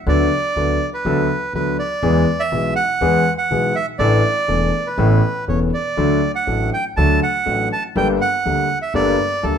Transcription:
0.06 D2 D3 F#3 B3 D4 A4 D5
0.56 D2 D3 F#3 B3 D4 A4
0.94 B4
1.05 D2 D3 F#3 B3 D4 A4
1.53 D2 D3 F#3 B3 D4 A4 B4
1.79 D5
2.03 E2 E3 G#3 B3 G#4
2.40 E5
2.52 B1 B2 E3 G#3 B3 G#4
2.76 F#5
3.01 E2 E3 G#3 B3 G#4
3.38 F#5
3.51 B1 B2 E3 G#3 B3 G#4
3.75 E5
3.99 A1 A2 E3 A3 D4 A4 D5
4.48 E1 E2 E3 A3 D4 A4
4.87 B4
4.98 A1 A2 E3 B3 C#4 A4
5.48 E1 E2 E3 B3 C#4 A4 C#5
5.74 D5
5.97 D2 D3 F#3 A3 D4 A4
6.35 F#5
6.47 A1 A2 F#3 A3 D4 A4
6.73 G5
6.97 D2 D3 F#3 A3 D4 A4 A5
7.23 F#5
7.46 A1 A2 F#3 A3 D4 A4
7.73 A5
7.96 G1 G2 G3 A#3 D4 A4 G5
8.21 F#5
8.45 D2 D3 G3 A#3 D4 A4
8.82 E5
8.94 G1 G2 G3 A#3 D4 A4 D5
9.43 D2 D3 G3 A#3 D4 A4

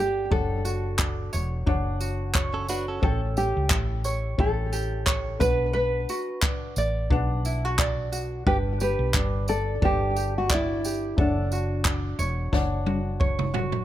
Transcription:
Already playing: G1 D4 G4 B4 D5
0.00 G4
0.30 F#1 D4 A4 C#5 F#5, kick
0.65 F#4, tambourine
0.99 D4, kick, clap
1.33 E1 C#5, tambourine
1.66 F#1 D4 C#5 F#5, kick
2.00 F#4, tambourine
2.35 C#5, kick, clap
2.54 C#4 A4
2.69 D4 F#4 B4, tambourine
2.88 C#4 A4
3.02 A1 C#4 A4 G5, kick
3.37 G4, tambourine
3.57 C#2
3.70 A1 E4, kick, clap
4.04 C#5, tambourine
4.38 A1 C#4 E4 A4 G5, kick
4.73 G4, tambourine
5.06 C#5, kick, clap
5.39 B1 D4 B4 F#5, kick, tambourine
5.73 B4
6.09 F#4, tambourine
6.42 D4, kick, clap
6.76 A1 D5, tambourine
7.10 B1 D4 B4 F#5, kick
7.45 E4, tambourine
7.65 F#4
7.79 D5, kick, clap
8.12 F#4, tambourine
8.46 G1 D4 G4 B4 G5, kick
8.80 G4 B4, tambourine
8.99 B1
9.14 G1 D4, kick, clap
9.48 A4 D5, tambourine
9.82 G1 D4 G4 B4 G5, kick
10.16 G4, tambourine
10.38 F#4
10.50 D5, kick, clap
10.54 E4
10.84 G4, tambourine
11.17 F#1 D4 A4 C#5 F#5, kick
11.21 D4
11.52 F#4, tambourine
11.85 D4, kick, clap
12.19 E1 C#5, tambourine
12.52 F#1 D4 C#5 F#5, kick, snare
12.86 F#4, high tom
13.20 C#5, kick
13.39 mid tom
13.54 F#4, floor tom
13.72 floor tom

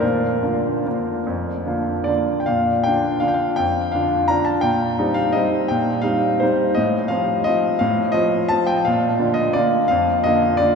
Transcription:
0.00 A#2 A#4
0.43 D3 A#3 F4
0.86 D3 A#3 F4
1.27 F2
1.66 D3 A#3 F4
2.04 D3 A#3 F4 D5
2.40 G5
2.46 A#2 F5
2.84 D3 D4 F4 G5
3.20 D3 D4 F4 F5
3.28 G5
3.34 F5
3.56 F2 G5
3.92 D3 D4 F4 F5
4.28 D3 D4 F4 A#5
4.45 A5
4.61 A#2 G5
4.99 G3 C4 D#4
5.14 F5
5.32 G3 C4 D#4 D#5
5.68 A#2 G5
6.02 G3 C4 D#4 F5
6.40 G3 C4 D#4 C5
6.75 A2 D#5
7.08 F3 C4 F4 F5
7.44 F3 C4 F4 D#5
7.79 A2 F5
8.12 F3 C4 F4 D#5
8.49 F3 C4 F4 A5
8.67 G5
8.85 A#2 F5
9.19 D3 A#3 F4
9.34 D#5
9.53 D3 A#3 F4 D5
9.88 F2 F5
10.24 D3 A#3 F4 D#5
10.57 D3 A#3 F4 D5

